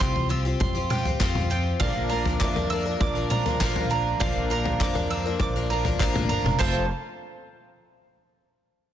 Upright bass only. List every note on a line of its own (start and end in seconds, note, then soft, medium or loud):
0.01 0.53 C2 medium
0.61 1.13 F2 medium
1.21 1.73 F2 medium
1.81 1.94 A#1 medium
1.95 2.34 A#1 medium
2.41 2.93 F2 medium
3.01 3.52 A#1 medium
3.60 4.12 A#1 loud
4.22 4.34 A#1 loud
4.35 4.74 A#1 medium
4.80 5.32 F2 loud
5.41 5.92 A#1 medium
6.00 6.14 A#1 medium
6.14 6.28 A1 medium
6.29 6.43 G1 medium
6.44 6.58 F1 medium
6.60 6.88 F1 medium